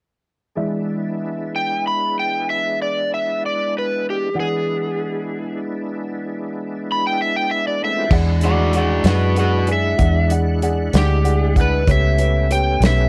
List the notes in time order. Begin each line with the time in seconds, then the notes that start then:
0.55 E3 G#3 B3 D4 E4 D5 E5
1.56 G5
1.87 B5
2.19 G5
2.50 E5
2.82 D5
3.14 E5
3.46 D5
3.78 B4
4.10 G4
4.34 E3 G#3 B3 D4 E4 G#4 D5 F#5
4.40 G#4
6.92 B5
7.07 G5
7.22 E5
7.36 G5
7.51 E5
7.68 D5
7.82 A3 B3 E5
7.87 C4 D4
7.93 E4 F4
7.98 G4 A4
8.04 B4 C5
8.10 E2 G#3 D4 E4 G#4 D5 F#5, kick, crash
8.41 F#4 G#4 D5 F#5, closed hi-hat
8.45 D5
8.73 G#4 D5 F#5, closed hi-hat
8.77 F#4 D5
9.04 F#2 F#4 G#4 D5 F#5, snare, closed hi-hat
9.08 B4
9.36 F#4 G#4 B4 D5 F#5, closed hi-hat
9.67 G#4 D5 G#5, closed hi-hat
9.72 E5
9.98 E2 G#4 D5 F#5, kick, closed hi-hat
10.30 G#4 D5 F#5, closed hi-hat
10.62 G#4 D5 F#5, closed hi-hat
10.93 D2 G#4 D5 F#5, snare, closed hi-hat
10.98 G4
11.24 G#4 D5 F#5, closed hi-hat
11.56 G#4 D5 F#5, kick, closed hi-hat
11.61 B4
11.87 C#2 A3 B3 C#4 G4 B4 C#5 E5, kick, closed hi-hat
12.18 G4 B4 C#5, closed hi-hat
12.50 G4 B4 C#5 G5, closed hi-hat
12.80 B1 G4 B4 C#5, snare, closed hi-hat
12.86 E5